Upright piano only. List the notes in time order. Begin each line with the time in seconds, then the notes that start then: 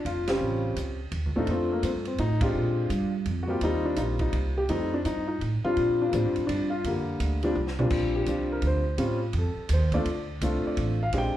0.06 F4
0.28 C#3 G3 C4 C#4 F4 G4 C5
1.36 A3 C4 D4 D#4 F4
1.51 F3 A3 C4
1.72 A#3
1.85 C4
2.07 C4
2.20 D#4
2.41 G#3 C4 D4 F4 G4
3.43 F#4
3.47 G3 A#3 C4 F4 G4
3.64 G3 C4 D#4
3.85 D4
3.97 G3 A#3 C4 D#4 F4
4.21 D#4
4.58 G4
4.70 G3 A3 C4 D#4
4.94 D4
5.06 D#4
5.28 D#4
5.65 F3 G3 C4 D4 F4
6.02 D4
6.09 A#3
6.14 F3 G3 C4 D4
6.47 D4
6.70 F4
6.86 D3 G3 A#3
7.44 F3 G3 C4 D4
7.79 A#2 F3 G3 C4 D4
8.16 G4
8.28 F3 G3 C4 D4
8.52 A#4
8.67 C5
8.98 G3 C4 C#4 F4
9.38 A4
9.73 C5
9.94 A3 C4 D4 F4 D5
10.42 A3 C4 D4 F4
10.67 D5
11.03 F5
11.14 G#3 C4 D4 G4
11.18 G5